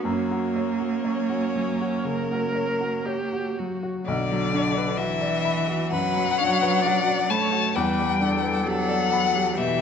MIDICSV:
0, 0, Header, 1, 5, 480
1, 0, Start_track
1, 0, Key_signature, 2, "minor"
1, 0, Tempo, 1005025
1, 14, Time_signature, 4, 2, 24, 8
1, 1934, Tempo, 927357
1, 3374, Tempo, 909091
1, 4949, End_track
2, 0, Start_track
2, 0, Title_t, "Violin"
2, 0, Program_c, 0, 40
2, 19, Note_on_c, 0, 73, 78
2, 1837, Note_off_c, 0, 73, 0
2, 1933, Note_on_c, 0, 74, 110
2, 2411, Note_on_c, 0, 76, 113
2, 2418, Note_off_c, 0, 74, 0
2, 2892, Note_off_c, 0, 76, 0
2, 2896, Note_on_c, 0, 78, 125
2, 3618, Note_on_c, 0, 81, 115
2, 3626, Note_off_c, 0, 78, 0
2, 3859, Note_on_c, 0, 79, 97
2, 3867, Note_off_c, 0, 81, 0
2, 4342, Note_on_c, 0, 78, 127
2, 4350, Note_off_c, 0, 79, 0
2, 4821, Note_on_c, 0, 76, 127
2, 4829, Note_off_c, 0, 78, 0
2, 4949, Note_off_c, 0, 76, 0
2, 4949, End_track
3, 0, Start_track
3, 0, Title_t, "Viola"
3, 0, Program_c, 1, 41
3, 0, Note_on_c, 1, 66, 84
3, 428, Note_off_c, 1, 66, 0
3, 497, Note_on_c, 1, 61, 85
3, 977, Note_on_c, 1, 70, 104
3, 984, Note_off_c, 1, 61, 0
3, 1460, Note_on_c, 1, 67, 97
3, 1467, Note_off_c, 1, 70, 0
3, 1710, Note_on_c, 1, 66, 77
3, 1717, Note_off_c, 1, 67, 0
3, 1940, Note_off_c, 1, 66, 0
3, 2898, Note_on_c, 1, 71, 98
3, 3141, Note_on_c, 1, 73, 102
3, 3148, Note_off_c, 1, 71, 0
3, 3369, Note_on_c, 1, 74, 94
3, 3377, Note_off_c, 1, 73, 0
3, 3621, Note_on_c, 1, 73, 96
3, 3628, Note_off_c, 1, 74, 0
3, 3862, Note_on_c, 1, 71, 85
3, 3870, Note_off_c, 1, 73, 0
3, 4099, Note_on_c, 1, 69, 101
3, 4107, Note_off_c, 1, 71, 0
3, 4808, Note_on_c, 1, 67, 88
3, 4816, Note_off_c, 1, 69, 0
3, 4949, Note_off_c, 1, 67, 0
3, 4949, End_track
4, 0, Start_track
4, 0, Title_t, "Grand piano"
4, 0, Program_c, 2, 0
4, 0, Control_c, 2, 64, 127
4, 23, Note_on_c, 2, 42, 84
4, 24, Control_c, 2, 64, 0
4, 117, Control_c, 2, 64, 127
4, 149, Note_on_c, 2, 66, 64
4, 267, Note_on_c, 2, 73, 64
4, 334, Note_off_c, 2, 66, 0
4, 379, Note_on_c, 2, 66, 55
4, 453, Note_off_c, 2, 73, 0
4, 499, Note_on_c, 2, 73, 67
4, 570, Note_off_c, 2, 66, 0
4, 618, Note_on_c, 2, 66, 64
4, 690, Note_off_c, 2, 73, 0
4, 745, Note_on_c, 2, 54, 61
4, 810, Note_off_c, 2, 66, 0
4, 865, Note_on_c, 2, 66, 62
4, 933, Note_off_c, 2, 54, 0
4, 962, Note_off_c, 2, 42, 0
4, 977, Note_on_c, 2, 49, 55
4, 1053, Note_off_c, 2, 66, 0
4, 1105, Note_on_c, 2, 66, 59
4, 1169, Note_off_c, 2, 49, 0
4, 1217, Note_on_c, 2, 73, 59
4, 1292, Note_off_c, 2, 66, 0
4, 1339, Note_on_c, 2, 66, 59
4, 1409, Note_off_c, 2, 73, 0
4, 1461, Note_on_c, 2, 73, 65
4, 1530, Note_off_c, 2, 66, 0
4, 1590, Note_on_c, 2, 66, 63
4, 1652, Note_off_c, 2, 73, 0
4, 1717, Note_on_c, 2, 54, 58
4, 1778, Note_off_c, 2, 66, 0
4, 1829, Note_on_c, 2, 66, 62
4, 1898, Note_off_c, 2, 54, 0
4, 1939, Note_off_c, 2, 66, 0
4, 1944, Control_c, 2, 64, 0
4, 1949, Note_on_c, 2, 35, 90
4, 2020, Control_c, 2, 64, 127
4, 2072, Note_on_c, 2, 54, 72
4, 2189, Note_on_c, 2, 62, 70
4, 2257, Note_off_c, 2, 54, 0
4, 2311, Note_on_c, 2, 71, 73
4, 2375, Note_off_c, 2, 62, 0
4, 2417, Note_on_c, 2, 66, 74
4, 2495, Note_off_c, 2, 71, 0
4, 2536, Note_on_c, 2, 74, 79
4, 2607, Note_off_c, 2, 66, 0
4, 2659, Note_on_c, 2, 83, 84
4, 2726, Note_off_c, 2, 74, 0
4, 2777, Note_on_c, 2, 66, 69
4, 2849, Note_off_c, 2, 83, 0
4, 2882, Note_off_c, 2, 35, 0
4, 2897, Note_on_c, 2, 42, 67
4, 2969, Note_off_c, 2, 66, 0
4, 3030, Note_on_c, 2, 54, 62
4, 3090, Note_off_c, 2, 42, 0
4, 3155, Note_on_c, 2, 62, 72
4, 3215, Note_off_c, 2, 54, 0
4, 3265, Note_on_c, 2, 71, 71
4, 3336, Note_off_c, 2, 62, 0
4, 3389, Note_on_c, 2, 66, 82
4, 3451, Note_off_c, 2, 71, 0
4, 3505, Note_on_c, 2, 74, 68
4, 3574, Note_off_c, 2, 66, 0
4, 3625, Note_on_c, 2, 83, 73
4, 3693, Note_off_c, 2, 74, 0
4, 3737, Note_on_c, 2, 66, 71
4, 3814, Note_off_c, 2, 83, 0
4, 3858, Note_off_c, 2, 66, 0
4, 3865, Note_on_c, 2, 40, 95
4, 3867, Control_c, 2, 64, 0
4, 3946, Control_c, 2, 64, 127
4, 3986, Note_on_c, 2, 55, 66
4, 4102, Note_on_c, 2, 62, 75
4, 4175, Note_off_c, 2, 55, 0
4, 4217, Note_on_c, 2, 71, 65
4, 4292, Note_off_c, 2, 62, 0
4, 4342, Note_on_c, 2, 67, 78
4, 4409, Note_off_c, 2, 71, 0
4, 4457, Note_on_c, 2, 74, 76
4, 4532, Note_off_c, 2, 67, 0
4, 4585, Note_on_c, 2, 83, 73
4, 4649, Note_off_c, 2, 74, 0
4, 4708, Note_on_c, 2, 67, 71
4, 4772, Note_off_c, 2, 83, 0
4, 4799, Note_off_c, 2, 40, 0
4, 4827, Note_on_c, 2, 47, 68
4, 4894, Note_off_c, 2, 67, 0
4, 4949, Note_off_c, 2, 47, 0
4, 4949, End_track
5, 0, Start_track
5, 0, Title_t, "Cello"
5, 0, Program_c, 3, 42
5, 24, Note_on_c, 3, 58, 100
5, 1685, Note_off_c, 3, 58, 0
5, 1931, Note_on_c, 3, 50, 102
5, 2408, Note_on_c, 3, 52, 102
5, 2416, Note_off_c, 3, 50, 0
5, 2902, Note_on_c, 3, 54, 108
5, 2910, Note_off_c, 3, 52, 0
5, 3620, Note_on_c, 3, 57, 93
5, 3628, Note_off_c, 3, 54, 0
5, 3864, Note_on_c, 3, 55, 88
5, 3872, Note_off_c, 3, 57, 0
5, 4331, Note_off_c, 3, 55, 0
5, 4334, Note_on_c, 3, 54, 100
5, 4812, Note_on_c, 3, 52, 115
5, 4820, Note_off_c, 3, 54, 0
5, 4949, Note_off_c, 3, 52, 0
5, 4949, End_track
0, 0, End_of_file